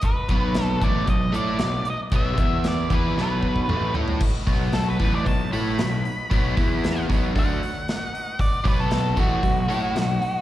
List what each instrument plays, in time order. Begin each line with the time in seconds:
0.01 lead electric guitar B4, kick, closed hi-hat
0.06 tonewheel organ D#4 F#4 B4 D#5
0.29 picked electric bass B1, overdriven electric guitar B2 F#3 B3, kick, closed hi-hat
0.33 tonewheel organ D#4 F#4 B4 C#5
0.54 tonewheel organ D#4 F#4 B4 D#5, snare, closed hi-hat
0.63 lead electric guitar A4
0.80 picked electric bass A1, overdriven electric guitar A2 E3 A3, tonewheel organ D#4 F#4 B4 D#5, lead electric guitar D5, kick, closed hi-hat
1.05 picked electric bass B1, overdriven electric guitar B2 F#3, tonewheel organ D#4 F#4 B4 D#5, kick, closed hi-hat
1.10 lead electric guitar D#5
1.33 picked electric bass A2, overdriven electric guitar A3 E4 A4, tonewheel organ D#4 F#4 B4 D#5, lead electric guitar D5, closed hi-hat
1.58 picked electric bass B1, overdriven electric guitar B2 F#3, tonewheel organ D#4 F#4 B4, snare, closed hi-hat
1.62 tonewheel organ D#5
1.85 tonewheel organ D#4 F#4 B4 D#5, closed hi-hat
1.90 lead electric guitar D#5
2.12 picked electric bass B1, overdriven electric guitar B2 F#3 B3, tonewheel organ D#4 F#4 B4 D#5, kick, closed hi-hat
2.16 lead electric guitar E5
2.37 picked electric bass E2, overdriven electric guitar E3 B3 E4, tonewheel organ B3 E4 B4 E5, kick, closed hi-hat
2.64 lead electric guitar D5, snare, closed hi-hat
2.90 picked electric bass E2, overdriven electric guitar E3 B3 E4, tonewheel organ D#4 F#4 B4 D#5, lead electric guitar B4, kick, closed hi-hat
3.17 picked electric bass B1, overdriven electric guitar B2 F#3 B3, snare
3.22 lead electric guitar B4
3.42 tonewheel organ D#4 F#4 B4 D#5, kick
3.56 kick
3.69 picked electric bass A1, overdriven electric guitar A2 E3 A3, tonewheel organ D#4 F#4 B4 D#5, mid tom
3.95 picked electric bass A2, overdriven electric guitar A3 E4 A4, tonewheel organ D#4 F#4 B4 D#5, floor tom
4.08 floor tom
4.20 tonewheel organ D#4 F#4 B4 D#5, kick, crash
4.46 picked electric bass B1, overdriven electric guitar B2 F#3 B3, tonewheel organ D#4 F#4 B4 D#5, kick, open hi-hat
4.73 tonewheel organ D#4 F#4 B4 C#5, lead electric guitar A4, snare, open hi-hat
4.89 lead electric guitar B4
4.99 picked electric bass A1, overdriven electric guitar A2 E3 A3, tonewheel organ D#4 F#4 B4 D#5, kick, open hi-hat
5.15 lead electric guitar D5
5.26 picked electric bass B1, overdriven electric guitar B2 F#3, tonewheel organ D#4 F#4 B4 D#5, lead electric guitar A5, kick, open hi-hat
5.52 picked electric bass A2, overdriven electric guitar A3 E4 A4, tonewheel organ D#4 F#4 B4 F#5, lead electric guitar B5, open hi-hat
5.78 picked electric bass B1, overdriven electric guitar B2 F#3, tonewheel organ D#4 F#4 B4 D#5, snare, open hi-hat
6.05 tonewheel organ D#4 F#4 B4 D#5, open hi-hat
6.29 picked electric bass B1, overdriven electric guitar B2 F#3 B3, tonewheel organ D#4 F#4 B4 D#5, kick, open hi-hat
6.55 picked electric bass E2, overdriven electric guitar E3 B3 E4, tonewheel organ B3 E4 B4 E5, kick, open hi-hat
6.84 snare, open hi-hat
7.08 picked electric bass B1, overdriven electric guitar B2 F#3 B3, tonewheel organ D#4 F#4 B4 D#5, kick, open hi-hat
7.35 picked electric bass D2, overdriven electric guitar D3 A3 D4, lead electric guitar F#5, kick, open hi-hat
7.61 tonewheel organ D#4 F#4 B4 C#5, open hi-hat
7.88 tonewheel organ D#4 F#4 B4 D#5, snare, open hi-hat
8.12 tonewheel organ D#4 F#4 B4 D#5, open hi-hat
8.39 tonewheel organ D#4 F#4 B4 D#5, lead electric guitar D5, kick, open hi-hat
8.62 picked electric bass B1, overdriven electric guitar B2 F#3 B3, tonewheel organ D#4 F#4 B4 F#5, kick, open hi-hat
8.68 lead electric guitar B4
8.80 lead electric guitar A4
8.89 tonewheel organ D#4 F#4 B4 D#5, snare, open hi-hat
9.13 picked electric bass A1, overdriven electric guitar A2, tonewheel organ D#4 F#4 B4 D#5, open hi-hat
9.17 overdriven electric guitar E3 A3, lead electric guitar F#4, kick
9.42 picked electric bass B1, overdriven electric guitar B2 F#3, tonewheel organ D#4 F#4 B4 D#5, kick, open hi-hat
9.69 picked electric bass A2, overdriven electric guitar A3 E4 A4, tonewheel organ D#4 F#4 B4 D#5, open hi-hat
9.94 picked electric bass B1, overdriven electric guitar B2 F#3, snare, open hi-hat
9.99 tonewheel organ D#4 F#4 B4 D#5
10.22 tonewheel organ D#4 F#4 B4 D#5, open hi-hat